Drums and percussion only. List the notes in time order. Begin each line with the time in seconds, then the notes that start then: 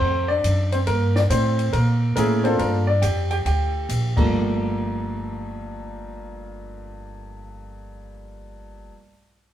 0.44 kick, hi-hat pedal, ride
0.72 ride
0.87 kick, ride
1.16 snare
1.30 kick, hi-hat pedal, ride
1.59 ride
1.73 kick, ride
2.16 kick, hi-hat pedal, ride
2.45 ride
2.59 kick, ride
3.02 kick, hi-hat pedal, ride
3.31 ride
3.46 kick, ride
3.89 kick, hi-hat pedal, ride
4.17 kick, crash